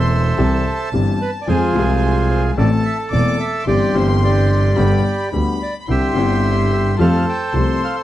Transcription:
Already playing: E1 E2 E3 A3 C4 A4 C5 E5 C6
0.37 C2 C3 E3 G3 C4 G4 A5
0.92 G1 G2 E3 G3 C4 G4
1.22 B4
1.42 D5
1.47 F2 F3 G#3 C4 F4 G#4 C5 G#5
1.73 C2 C3 F3 G#3 C4 G#4
2.30 C5
2.57 A1 A2 E3 A3 C4 A4 D5 A5
2.85 E5
3.12 E1 E2 E3 A3 C4 A4 D5 D6
3.40 E5
3.60 D6
3.66 G1 G2 E3 G3 C4 G4 D5 C6
3.93 G1 G2 E3 G3 C4 G4 C5
4.24 G4 D5
4.76 G1 G2 D3 G3 B3 G4 B5
5.32 D2 D3 G3 B3 G4 B5
5.63 D5
5.81 B5
5.87 C2 C3 D3 G3 C4 E4 G4 E5 C6
6.14 G1 G2 D3 G3 C4
6.18 E4
6.73 E5
6.98 F2 F3 A3 C4 G4 A4 C5 F5 A5
7.29 G5
7.53 C2 C3 F3 A3 C4 G4 C6
7.84 F5

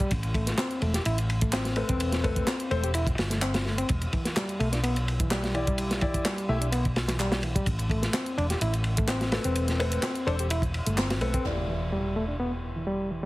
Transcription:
0.00 G3, kick
0.11 A1, kick, closed hi-hat, ride
0.23 closed hi-hat, ride
0.34 A3, kick, ride
0.47 snare, closed hi-hat
0.58 C4, snare, clap, closed hi-hat, ride
0.71 closed hi-hat
0.82 E1 A3, ride
0.94 G4, snare, closed hi-hat
1.05 A1 E4, closed hi-hat, ride
1.18 closed hi-hat, ride
1.30 ride
1.41 A3, kick, closed hi-hat
1.53 C4, snare, clap, closed hi-hat, ride
1.65 snare, closed hi-hat
1.76 A3 C4 A4 B4, ride
1.89 E1 C4, kick, closed hi-hat
2.00 closed hi-hat, ride
2.12 snare, closed hi-hat
2.24 A3 C4 A4 B4, kick, ride
2.36 kick, closed hi-hat
2.47 C4, snare, clap, closed hi-hat, ride
2.60 closed hi-hat
2.71 E1 A3 C4 A4 C5, ride
2.84 G4, closed hi-hat
2.94 E4, closed hi-hat, ride
3.07 kick, closed hi-hat
3.18 G1, snare, ride
3.30 A3, snare, closed hi-hat
3.42 C4, clap, closed hi-hat, ride
3.54 snare, closed hi-hat, ride
3.66 A3, snare
3.78 C4, closed hi-hat, ride
3.89 E1, kick, closed hi-hat, ride
4.01 closed hi-hat, ride
4.13 E3, kick, ride
4.25 snare, closed hi-hat
4.36 G3, snare, clap, closed hi-hat, ride
4.49 closed hi-hat
4.60 B1 A3, ride
4.72 D4, snare, closed hi-hat
4.83 B3, closed hi-hat, ride
4.96 closed hi-hat, ride
5.08 ride
5.20 E3, kick, closed hi-hat
5.31 G3, snare, clap, closed hi-hat, ride
5.44 snare, closed hi-hat
5.54 E3 E4 G4 D5, ride
5.67 G3, kick, closed hi-hat
5.78 closed hi-hat, ride
5.91 snare, closed hi-hat
6.01 E3 E4 G4 D5, kick, ride
6.14 kick, closed hi-hat
6.25 G3, snare, clap, closed hi-hat, ride
6.38 closed hi-hat
6.49 B1 A3 E4 G4 E5
6.61 D4, closed hi-hat
6.72 B3, closed hi-hat, ride
6.85 kick, closed hi-hat
6.96 snare, ride
7.08 E3, snare, closed hi-hat, ride
7.19 G3, clap, closed hi-hat, ride
7.32 snare, closed hi-hat
7.43 E3, ride
7.55 G3, kick, closed hi-hat
7.66 A1, kick, closed hi-hat, ride
7.79 closed hi-hat, ride
7.90 A3, kick, ride
8.03 snare, closed hi-hat
8.14 C4, snare, clap, closed hi-hat, ride
8.26 closed hi-hat
8.38 E1 D4, ride
8.50 G4, snare, closed hi-hat
8.61 A1 E4, closed hi-hat, ride
8.73 closed hi-hat, ride
8.84 ride
8.97 A3, kick, closed hi-hat
9.08 C4, snare, clap, closed hi-hat, ride
9.21 snare, closed hi-hat
9.32 A3 C4 A4 B4, snare, ride
9.44 E1 C4, closed hi-hat
9.56 closed hi-hat, ride
9.68 snare, closed hi-hat
9.79 A3 C4 A4 B4, ride
9.92 closed hi-hat, ride
10.03 C4, snare, clap, closed hi-hat, ride
10.15 closed hi-hat
10.27 E1 C4 D4 A4 C5, ride
10.39 G4, closed hi-hat
10.50 E4, closed hi-hat, ride
10.62 kick, closed hi-hat
10.74 ride
10.87 G1 A3, closed hi-hat
10.98 C4, snare, clap, closed hi-hat, ride
11.10 snare, closed hi-hat, ride
11.21 B1 A3 C4 A4 B4, ride
11.34 C4, kick, closed hi-hat
11.45 E1 E4 G4 D5, impact
11.69 E3
11.92 G3
12.16 A3
12.28 D4
12.40 B3
12.76 E3
12.87 G3
13.11 E3

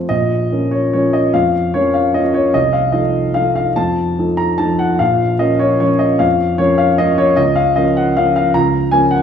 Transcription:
Already playing: F2 A3 C4 C5
0.09 A#1 D#5
0.52 F3 C#4 A#4
0.71 C#5
0.93 F3 C#4 A#4 C#5
1.13 D#5
1.34 F2 F5
1.74 F3 C#4 A#4 C#5
1.94 F5
2.14 F3 C#4 A#4 D#5
2.34 C#5
2.54 C2 D#5
2.73 F5
2.92 F3 D#4 A4 D#5
3.34 F3 D#4 A4 F5
3.55 F5
3.76 F2 A5
4.18 F3 D#4 A4
4.37 A#5
4.58 F3 D#4 A4 A5
4.79 F#5
4.99 A#1 F5
5.39 F3 C#4 A#4 D#5
5.59 C#5
5.80 F3 C#4 A#4 C#5
5.99 D#5
6.19 F2 F5
6.58 F3 C#4 A#4 C#5
6.78 F5
6.98 F3 C#4 A#4 D#5
7.18 C#5
7.36 C#2 D#5
7.56 F5
7.76 F3 C#4 A#4 D#5
7.97 F#5
8.17 F3 C#4 A#4 F5
8.36 F5
8.54 C#2 A#5
8.91 F3 C#4 A#4 G#5
9.11 F#5

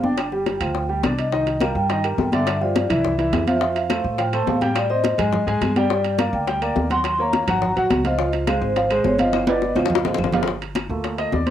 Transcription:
Already playing: G1
0.03 D4 D5 G5, high conga
0.18 high bongo, high conga, high timbale, claves
0.32 G3 G4, high bongo, high conga
0.46 high bongo, high conga, high timbale
0.60 D2 F3 F4, high bongo, high conga, high timbale, claves
0.75 high bongo, high conga
0.89 G3 G4, high conga
1.03 C2 D4 D5, high bongo, low bongo, high conga, high timbale, claves
1.18 D#5, high bongo, high timbale
1.32 D#3 D#4 D#5, high bongo, high conga
1.46 high bongo, high conga, high timbale
1.60 G3 G4 A#4 F5, high bongo, high conga, high timbale, claves
1.75 G2 G5, high bongo, high conga
1.89 D#3 D#4 D#5, high bongo, high conga, high timbale
2.04 G3 G4 A#4, high conga, high timbale, claves
2.18 G2, high bongo, low bongo, high conga
2.32 D3 D4 D5 E5, high bongo, high conga, high timbale
2.47 high bongo, high timbale, claves
2.61 F3 F4 G4 D5, high bongo, high conga
2.76 high bongo, high conga, high timbale
2.89 C2 E3 E4 E5, high bongo, high conga, low conga, high timbale, claves
3.04 high bongo, high conga, low conga
3.18 E3 E4 E5, high conga, high timbale
3.32 F2, high bongo, low bongo, high conga, high timbale, low timbale, claves
3.47 F3 F4 E5 F5, high bongo, high conga, high timbale
3.61 F3 F4 F5, high bongo
3.76 F5, high bongo, high conga, high timbale
3.90 A3 A4 C5, high bongo, high conga, high timbale, claves
4.04 A2, high bongo, high conga
4.18 F3 F4 F5 G5, high bongo, high conga, high timbale
4.33 A3 A4 C5 A5, high conga, high timbale, claves
4.47 A2 F5, high bongo, low bongo, high conga, low timbale
4.61 G3 G4 G5, high bongo, high conga, high timbale
4.76 D5, high bongo, high timbale, claves
4.90 C4 C5 D#5, high bongo, high conga
5.04 high bongo, high conga, high timbale
5.18 G#2 G#3 G#4 G#5, high bongo, high conga, low conga, high timbale, claves
5.33 high bongo, high conga, low conga
5.47 G#2 G#3 G#4 G#5, high conga, high timbale
5.61 G2, high bongo, low bongo, high conga, high timbale, claves
5.76 G3 G4 D5 G5, high bongo, high conga, high timbale
5.90 G3 G4, high bongo, high conga
6.05 high bongo, high conga, high timbale
6.18 A#3 A#4 D5 F5, high bongo, high conga, high timbale, claves
6.33 D2 G5, high bongo, high conga
6.47 G3 G4 G5, high bongo, high conga, high timbale
6.62 A#3 A#4 D5, high conga, high timbale, claves
6.76 D#2, high bongo, low bongo, high conga
6.90 F#3 F#4 F#5 C6, high bongo, high conga, high timbale
7.04 high bongo, high conga, high timbale, claves
7.19 A#3 A#4 C#5 A#5, high bongo, high conga
7.33 high bongo, high conga, high timbale
7.47 G#1 F#3 F#4 F#5, high bongo, high conga, low conga, high timbale, claves
7.62 high bongo, high conga, low conga
7.76 A#1 F#3 F#4 F#5, high conga, high timbale
7.90 C#2, high bongo, low bongo, high conga, high timbale, claves
8.05 F3 F4 D#5 F5, high bongo, high conga, high timbale
8.19 F3 F4 F5, high bongo
8.33 high bongo, high conga, high timbale
8.47 G#3 G#4 C5 F5, high bongo, high conga, high timbale, claves
8.61 G#1 C5, high bongo, high conga
8.76 F3 F4 F5, high bongo, high conga, high timbale
8.90 G#3 G#4 C5, high conga, high timbale, claves
9.04 G1 C#5, high bongo, low bongo, high conga
9.19 F3 F4 D#5 F5, high bongo, high conga, high timbale
9.33 high bongo, high conga, high timbale, claves
9.47 B3 B4 D5, high bongo, high conga, high timbale
9.62 high bongo
9.75 D2 F3 F4 F5, high bongo, high conga, high timbale, claves
9.85 high bongo
9.90 low conga
9.95 high bongo
10.04 G#1 F3 F4 F5, low bongo, low timbale
10.14 low bongo
10.18 G1, low conga, claves
10.24 low bongo
10.32 F3 F4 F5, low conga, low timbale
10.43 low bongo, high conga
10.48 high bongo
10.61 high bongo, high conga, high timbale
10.75 high bongo, high conga, high timbale, claves
10.89 D2 A3 A#3 F4, high bongo, high conga
11.04 high bongo, high conga, high timbale
11.18 D#5, high conga, high timbale, claves
11.32 D#2 D5, high bongo, low bongo, high conga
11.46 C5, high bongo, high conga, high timbale

